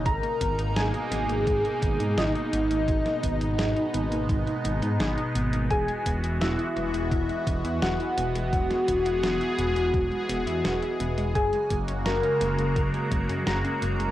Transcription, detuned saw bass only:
\new Staff \with { instrumentName = "Detuned saw bass" } { \clef bass \time 4/4 \key gis \minor \tempo 4 = 85 gis,,16 r16 gis,,16 gis,,16 gis,,16 r16 gis,,16 gis,,16 gis,,16 r16 gis,,16 gis,16 gis,,16 r16 gis,,16 gis,,16 | gis,,16 r16 gis,,16 gis,,16 gis,,16 r16 gis,,16 gis,,16 gis,,16 r16 gis,,16 gis,16 gis,,16 r16 gis,,16 gis,,16 | e,,16 r16 e,,16 e,,16 e,,16 r16 e,,16 e,,16 e,,16 r16 e,,16 e,16 e,,16 r16 e,,16 e,,16 | e,,16 r16 e,,16 e,,16 e,,16 r16 e,,16 e,,16 e,,16 r16 e,,16 e,16 e,,16 r16 e,,16 e,,16 |
fis,,16 r16 fis,,16 fis,,16 fis,,16 r16 fis,,16 fis,,16 fis,,16 r16 fis,,16 fis,16 fis,,16 r16 fis,,16 fis,,16 | }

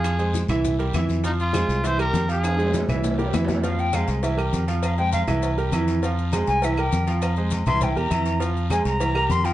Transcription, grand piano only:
\new Staff \with { instrumentName = "Grand piano" } { \time 4/4 \key f \minor \tempo 4 = 201 <f f' f''>8 <aes aes' c''>4 <e e' e''>4 <g g' bes'>8 <e e' e''>4 | <f f' f''>4 <aes aes' c''>4 <e e' e''>8 <g g' bes'>4 <f f' f''>8~ | <f f' f''>8 <aes aes' c''>4 <e e' e''>4 <g g' bes'>8 <e e' e''>4 | <f f' f''>4 <aes aes' c''>4 <e e' e''>8 <g g' bes'>4 <f f' f''>8~ |
<f f' f''>8 <aes aes' c''>4 <e e' e''>4 <g g' bes'>8 <e e' e''>4 | <f f' f''>4 <aes aes' c''>4 <e e' e''>8 <g g' bes'>4 <f f' f''>8~ | <f f' f''>8 <aes aes' c''>4 <e e' e''>4 <g g' bes'>8 <e e' e''>4 | <f f' f''>4 <aes aes' c''>4 <e e' e''>8 <g g' bes'>4 <f f' f''>8 | }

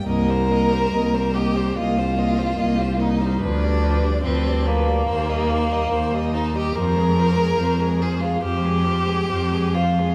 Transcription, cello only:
\new Staff \with { instrumentName = "Cello" } { \clef bass \time 4/4 \key c \minor \tempo 4 = 72 c,4 c,4 c,4 c,4 | d,4 d,4 ees,4 ees,4 | f,4 f,4 f,4 f,4 | }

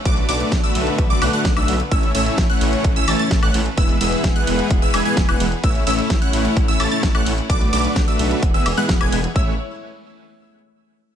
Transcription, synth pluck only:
\new Staff \with { instrumentName = "Synth pluck" } { \time 4/4 \key a \major \tempo 4 = 129 d'''8 d'''8. e'''4 d'''16 fis'''16 fis'''8 e'''8 r16 | e'''8 e'''8. fis'''4 e'''16 a'''16 a'''8 fis'''8 r16 | e'''8 e'''8. fis'''4 e'''16 gis'''16 gis'''8 fis'''8 r16 | e'''8 e'''8. fis'''4 e'''16 a'''16 a'''8 fis'''8 r16 |
d'''8 d'''8. e'''8. r16 e'''16 r16 fis'''8 gis'''8 r16 | e'''8 r2. r8 | }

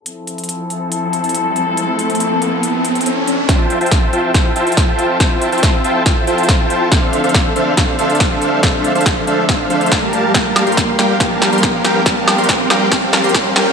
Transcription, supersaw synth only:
\new Staff \with { instrumentName = "Supersaw synth" } { \time 4/4 \key f \major \tempo 4 = 140 r1 | r1 | <f' c'' e'' g'' a''>8. <f' c'' e'' g'' a''>8. <f' c'' e'' g'' a''>8 <f' c'' e'' g'' a''>8 <f' c'' e'' g'' a''>8. <f' c'' e'' g'' a''>8. | <f' c'' e'' g'' a''>8. <f' c'' e'' g'' a''>8. <f' c'' e'' g'' a''>8 <f' c'' e'' g'' a''>8 <f' c'' e'' g'' a''>8. <f' c'' e'' g'' a''>8. |
<d' a' c'' e'' f''>8. <d' a' c'' e'' f''>8. <d' a' c'' e'' f''>8 <d' a' c'' e'' f''>8 <d' a' c'' e'' f''>8. <d' a' c'' e'' f''>8. | <d' a' c'' e'' f''>8. <d' a' c'' e'' f''>8. <d' a' c'' e'' f''>8 <d' a' c'' e'' f''>8 <d' a' c'' e'' f''>8. <g g' bes' f'' a''>8. | <g g' bes' f'' a''>8. <g g' bes' f'' c'''>8. <g g' bes' f'' g''>8 <g g' bes' f'' a''>8. <g g' bes' f'' c'''>8. <g g' bes' f'' g''>8 | <g g' bes' f'' a''>8. <g g' bes' f'' c'''>8. <g g' bes' f'' g''>8 <g g' bes' f'' a''>8. <g g' bes' f'' c'''>8. <g g' bes' f'' g''>8 | }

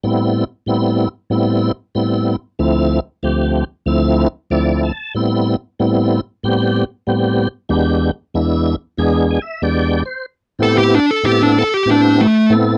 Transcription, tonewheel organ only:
<<
  \new Staff \with { instrumentName = "Tonewheel organ" } { \time 4/4 \key a \minor \tempo 4 = 94 r1 | r2. d''8 a''8 | r1 | r2 \tuplet 3/2 { r8. gis''16 e''8 d''4 c''8 } |
r1 | }
  \new Staff \with { instrumentName = "Tonewheel organ" } { \time 4/4 \key a \minor <a, g b c' e'>8 r8 <a, g b c' e'>8 r8 <a, g b c' e'>8 r8 <a, g b c' e'>8 r8 | <d, f a c' e'>8 r8 <d, f a c' g'>8 r8 <d, f a c' e'>8 r8 <d, f a c' e'>8 r8 | <a, g b c' e'>8 r8 <a, g b c' e'>8 r8 <a, g b c' g'>8 r8 <a, g b c' g'>8 r8 | <e, gis b d' g'>8 r8 <e, gis b d' e'>8 r8 <e, gis b d' gis'>8 r8 <e, gis b d' g'>8 r8 |
r8 <a, b c' e' g'>8 r8 <a, b c' e' a'>8 r8 <a, b c' e' g'>8 r8 <a, b c' e' a'>8 | }
>>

